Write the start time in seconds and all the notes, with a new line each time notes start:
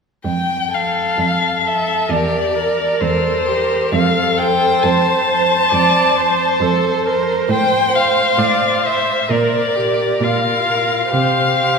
0.25 F2 G5
0.73 A4 F5
1.18 F2
1.65 A4 E5
2.09 E2 G4 A#4 D5
2.55 A#4
3.01 E2 A4 C5
3.47 G4 A#4
3.92 F2 A4 F5
4.38 C5 G5
4.83 F2 C5 A5
5.29 C5
5.72 F2 D5
6.17 C5
6.60 F2 A4
7.06 A#4 C5
7.49 A2 C5 G5
7.93 C5 F5
8.38 A2 D5
8.84 C5 E5
9.30 A#2 A#4 D5
9.76 G4 A#4
10.20 A#2 F4 F5
10.67 A#4
11.11 C3 G4 C5 F5
11.59 G4